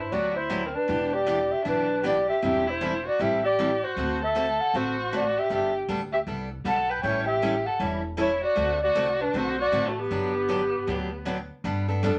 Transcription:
0.00 E4 C5
0.12 D2 D3 F#3 B3 D4 F#4 G4 D5
0.36 E4 C5
0.50 D3 F#3 B3 D4 G4
0.66 C4 A#4
0.74 D4 B4
0.88 E1 E3 B3 D4 G4
1.13 G4 D5
1.26 E3 B3 D4 G4
1.50 G4 E5
1.65 B1 E3 B3 D4 G4 B4
2.03 E3 B3 D4 G4 D5
2.28 G4 E5
2.42 E1 E3 G3 C4 E4 G4 A4 E5
2.67 E4 C5
2.81 E3 G3 C4 E4 A4
3.06 F#4 D5
3.19 A1 E3 G3 C4 E4 G4 A4 E5
3.44 G4 D5
3.59 E3 G3 C4 E4 A4
3.84 F#4 C5
3.96 D2 D3 A3 C4 F#4 A4
4.23 A4 E5
4.35 D3 A3 C4 F#4 A4
4.60 A4 F#5
4.74 A1 D3 A3 C4 F#4 A4 C5
5.12 D3 A3 C4 F#4 A4
5.17 D5
5.37 G4 E5
5.49 G1 G3 B3 D4 G4 A4
5.55 E5
5.88 D2 G3 B3 D4 A4
6.13 G4 E5
6.27 C2 G3 B3 D4 A4
6.64 B1 G3 B3 D4 A4 F#5
6.89 B4 G5
7.03 A1 E3 G3 C#4 E4 A4 C#5 G5
7.27 G4 E5
7.42 E3 G3 C#4 E4 A4
7.66 A4 F#5
7.80 E1 E3 G3 C#4 E4 A4
8.17 E3 G3 C#4 E4 A4 C#5
8.44 F#4 D5
8.55 D2 D3 A3 C4 F#4 A4
8.83 F#4 D5
8.95 C2 D3 A3 C4 F#4 A4
9.21 D4 B4
9.33 B1 D3 A3 C4 F#4 A4 C5
9.38 F#4
9.61 F#4 D5
9.72 A1 D3 A3 C4 F#4 A4
9.88 A3 F#4
9.99 B3 G4
10.11 G1 D3 F#3 B3 D4 G4
10.49 D3 F#3 B3 D4 G4
10.87 D2 D3 F#3 B3 D4 G4
11.25 D3 F#3 B3 D4 G4
11.64 G2 G3 B3 D4 A4
11.88 B3 D4 A4
12.03 F#2 G3 B3 D4 A4

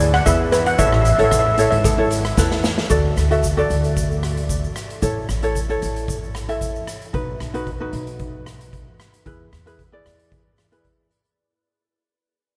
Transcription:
Already playing: D2 E4 G#4 D5 G#5
0.00 closed hi-hat, shaker
0.14 F#5, cross-stick, closed hi-hat
0.26 E2 E4 G#4 B4 E5, kick, closed hi-hat, shaker
0.52 B4, cross-stick, closed hi-hat, shaker
0.66 F#5, closed hi-hat
0.78 A1 E4 A4 C#5 E5, kick, closed hi-hat, shaker
0.87 E5
0.92 E5, cross-stick
1.01 E5, closed hi-hat
1.05 E5, shaker
1.16 A1 E4 A4 C#5 E5, closed hi-hat
1.24 E5
1.31 E5, kick, cross-stick, closed hi-hat, shaker
1.39 E5
1.47 E5
1.54 E4 E5, closed hi-hat
1.58 A4 C#5 E5, shaker
1.71 G#1 E5, closed hi-hat
1.84 A4, kick, closed hi-hat, shaker
1.98 E4 A4 C#5
2.11 closed hi-hat, shaker
2.25 cross-stick, closed hi-hat
2.37 E2 E4 A4 B4, kick, snare, shaker
2.51 snare
2.64 snare, shaker
2.78 snare
2.90 D2 F#4 A4 D5, kick, closed hi-hat, shaker
3.17 D2, cross-stick, closed hi-hat, shaker
3.31 F#4 A4 E5, closed hi-hat, shaker
3.43 kick, closed hi-hat, shaker
3.57 F#4 A4 D5, shaker
3.70 D2, closed hi-hat, shaker
3.84 closed hi-hat, shaker
3.97 kick, closed hi-hat, shaker
4.11 shaker
4.23 cross-stick, closed hi-hat
4.37 closed hi-hat
4.49 kick, closed hi-hat, shaker
4.64 shaker
4.76 cross-stick, closed hi-hat, shaker
4.90 closed hi-hat
5.02 A1 E4 A4 C#5, kick, closed hi-hat, shaker
5.29 A1, cross-stick, closed hi-hat, shaker
5.42 E4 A4 C#5, closed hi-hat, shaker
5.55 kick, closed hi-hat, shaker
5.69 E4 A4 C#5, shaker
5.82 A1, closed hi-hat, shaker
5.96 closed hi-hat, shaker
6.08 kick, closed hi-hat, shaker
6.23 shaker
6.35 cross-stick, closed hi-hat, shaker
6.49 E4 A4 E5, closed hi-hat
6.61 kick, closed hi-hat, shaker
6.75 shaker
6.87 cross-stick, closed hi-hat, shaker
7.02 closed hi-hat
7.13 B1 D#4 F#4 B4, kick, closed hi-hat
7.40 B1, cross-stick, closed hi-hat
7.54 D#4 F#4 B4, closed hi-hat
7.67 kick, closed hi-hat
7.80 D#4 F#4 B4
7.93 B1, closed hi-hat
8.07 closed hi-hat
8.19 kick, closed hi-hat
8.46 cross-stick, closed hi-hat
8.61 closed hi-hat
8.73 kick, closed hi-hat
9.00 cross-stick, closed hi-hat
9.14 closed hi-hat
9.26 E2 E4 G#4 B4, kick, closed hi-hat
9.53 E2, cross-stick, closed hi-hat
9.66 E4 G#4 B4, closed hi-hat
9.79 kick, closed hi-hat
9.92 E4 G#4 D5
10.06 E2, cross-stick, closed hi-hat
10.19 closed hi-hat
10.32 kick, closed hi-hat
10.58 cross-stick, closed hi-hat
10.72 E4 G#4 B4, closed hi-hat
10.85 kick, closed hi-hat
11.11 closed hi-hat
11.25 closed hi-hat

